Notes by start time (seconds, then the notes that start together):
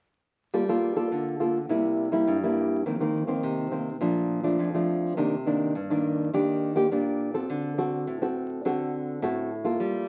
0.54 G3 A#3 F4 A4
0.69 A#3 F4 A4
0.96 A#3 F4 A4
1.12 D3
1.40 A#3 F4 A4
1.69 C3 G3 A#3 E4
2.12 G3 A#3 E4
2.28 G2
2.43 G3 A#3 E4
2.86 F2 D#3 A#3 C4
3.00 D#3 A#3 C4
3.27 D#3 A#3 C4
3.43 C3
3.71 D#3 A#3 C4
4.01 A#2 F3 A3 D4
4.43 F3 A3 D4
4.59 F2
4.74 F3 A3 D4
5.17 C3 D#3 A#3 D4
5.46 D#3 A#3 D4
5.75 G2
5.90 D#3 A#3 D4
6.34 D#3 A#3 D4 G4
6.76 A#3 D4 G4
6.92 A#2 A#3 D4 G4
7.34 C4 F#4 A4
7.50 D3
7.78 C4 F#4 A4
8.07 A2
8.22 C4 F#4 A4
8.65 D3 C4 F#4 A4
9.22 A2 C4 F#4 A4
9.64 A#3 F4 A4
9.80 G3